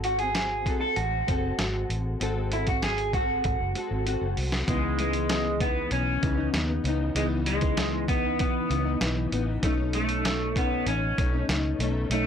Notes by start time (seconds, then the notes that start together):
Already playing: G#1 G#3 C4 F#4 A4
0.04 F#4, closed hi-hat
0.19 F#4 G#4, closed hi-hat
0.23 C4
0.35 snare, closed hi-hat
0.65 G#3 C4 F#4, kick, closed hi-hat
0.69 A4
0.81 A4
0.96 A1 F#4, closed hi-hat
1.27 F#1 G#3 C4 F#4 A4, kick, closed hi-hat
1.58 G#1 G#3 C4 F#4 A4, snare, closed hi-hat
1.90 A1, closed hi-hat
2.20 G#1 G#3 C4 F#4 A4, closed hi-hat
2.52 E4, closed hi-hat
2.67 C4 F#4, kick, closed hi-hat
2.82 G#4, snare, closed hi-hat
2.98 closed hi-hat
3.12 G#3 C4 F#4 A4, kick, closed hi-hat
3.44 G#1, kick, closed hi-hat
3.60 F#1
3.74 G#3 C4 F#4, closed hi-hat
3.78 A4
3.91 G#1
4.04 G#3 C4 F#4, closed hi-hat
4.08 A4
4.21 F#1
4.37 C2, open hi-hat
4.52 snare
4.67 C#2 C#3 E3 G#3 B3 D#4, kick, closed hi-hat
4.99 G#3, closed hi-hat
5.13 closed hi-hat
5.29 snare, closed hi-hat
5.59 C#3 E3 B3, kick, closed hi-hat
5.63 D#4
5.91 B1 C#4, closed hi-hat
6.21 C#2 C#3 E3 B3 D#4, kick, closed hi-hat
6.37 B3 D#4
6.41 E3
6.53 D#2 C#3 B3 D#4, snare, closed hi-hat
6.84 C#2 C#3 E3 B3 D#4, closed hi-hat
7.14 C#2 C#3 E3 G#3 B3 D#4, closed hi-hat
7.46 G#3, closed hi-hat
7.61 kick, closed hi-hat
7.77 snare, closed hi-hat
8.07 C#3 E3 B3 D#4, kick, closed hi-hat
8.39 B1 B3, kick, closed hi-hat
8.69 C#2 C#3 E3 B3, closed hi-hat
8.73 D#4
8.84 B3 D#4
8.88 E3
9.00 B1 C#3 E3 B3 D#4, snare, closed hi-hat
9.31 A1 C#3 E3 B3, closed hi-hat
9.35 D#4
9.62 B1 B2 A3 C#4 D#4, kick, closed hi-hat
9.93 A3, closed hi-hat
10.09 closed hi-hat
10.25 snare, closed hi-hat
10.55 B2 A3 B3 C#4, kick, closed hi-hat
10.59 D#4
10.87 A1 C#4, closed hi-hat
11.16 B1 B2 A3 C#4, kick, closed hi-hat
11.21 D#4
11.32 A3 C#4 D#4
11.48 C#2 B2 A3 C#4 D#4, snare, closed hi-hat
11.79 B1 B2 A3 C#4, closed hi-hat
11.83 D#4
12.10 B1 B2 A3 C#4 D#4, closed hi-hat